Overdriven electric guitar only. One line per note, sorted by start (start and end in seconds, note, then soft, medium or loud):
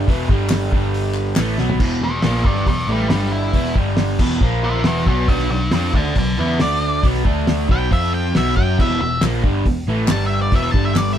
0.08 0.29 E2 medium
0.08 0.29 B2 loud
0.08 0.30 E3 loud
0.29 0.72 G2 loud
0.29 0.72 D3 loud
0.29 0.72 G3 loud
0.73 1.37 G2 medium
0.73 1.37 D3 medium
0.73 1.37 G3 loud
1.37 1.58 A2 medium
1.37 1.59 E3 medium
1.37 1.59 A3 loud
1.59 1.80 B2 loud
1.59 1.80 F#3 medium
1.59 1.81 B3 loud
1.80 2.01 E2 medium
1.80 2.01 B2 loud
1.80 2.02 E3 loud
2.02 2.20 E2 medium
2.02 2.20 B2 medium
2.23 2.44 A#2 medium
2.23 2.45 F3 loud
2.23 2.45 A#3 loud
2.45 2.66 G2 medium
2.45 2.67 D3 medium
2.45 2.67 G3 loud
2.66 2.84 E2 medium
2.66 2.85 B2 medium
2.88 3.10 A2 medium
2.88 3.10 E3 medium
2.88 3.11 A3 medium
3.11 3.53 G2 medium
3.11 3.54 D3 loud
3.11 3.54 G3 loud
3.53 3.75 E2 loud
3.53 3.76 B2 loud
3.53 3.76 E3 loud
3.76 4.19 G2 loud
3.76 4.19 D3 loud
3.76 4.19 G3 loud
4.20 4.41 E2 medium
4.20 4.41 B2 loud
4.20 4.41 E3 medium
4.41 4.84 A#2 loud
4.41 4.84 F3 loud
4.41 4.85 A#3 loud
4.85 5.06 E2 medium
4.85 5.05 B2 loud
4.85 5.07 E3 loud
5.06 5.27 B2 medium
5.06 5.28 F#3 loud
5.06 5.28 B3 loud
5.28 5.49 B2 loud
5.28 5.50 F#3 medium
5.28 5.50 B3 loud
5.50 5.68 B2 medium
5.50 5.68 F#3 medium
5.72 5.93 F3 loud
5.72 5.94 C4 loud
5.72 5.94 F4 loud
5.94 6.15 D3 medium
5.94 6.16 A3 medium
5.94 6.16 D4 medium
6.16 6.33 B2 medium
6.16 6.34 F#3 medium
6.38 6.59 E3 medium
6.38 6.59 B3 medium
6.38 6.60 E4 loud
6.60 7.03 D3 medium
6.60 7.03 A3 medium
6.60 7.03 D4 loud
7.03 7.24 B2 loud
7.03 7.25 F#3 loud
7.03 7.25 B3 loud
7.24 7.67 D3 loud
7.24 7.68 A3 loud
7.24 7.68 D4 loud
7.69 7.90 B2 loud
7.69 7.90 F#3 loud
7.69 7.91 B3 loud
7.91 8.34 F3 loud
7.91 8.34 C4 loud
7.91 8.34 F4 loud
8.35 8.55 B2 medium
8.35 8.56 F#3 medium
8.35 8.56 B3 loud
8.57 8.77 F#3 loud
8.57 8.78 C#4 loud
8.57 8.78 F#4 medium
8.79 8.99 E2 medium
8.79 9.00 B2 medium
8.79 9.00 E3 loud
9.02 9.18 E2 medium
9.02 9.18 B2 medium
9.23 9.43 A#2 loud
9.23 9.43 F3 loud
9.23 9.44 A#3 medium
9.44 9.64 G2 loud
9.44 9.65 D3 loud
9.44 9.65 G3 loud
9.67 9.83 E2 medium
9.67 9.83 B2 medium
9.88 10.08 A2 medium
9.88 10.09 E3 medium
9.88 10.09 A3 loud
10.10 10.52 G2 medium
10.10 10.52 D3 medium
10.10 10.53 G3 loud
10.53 10.73 E2 loud
10.53 10.74 B2 loud
10.53 10.74 E3 loud
10.74 11.17 G2 loud
10.74 11.17 D3 loud
10.74 11.17 G3 loud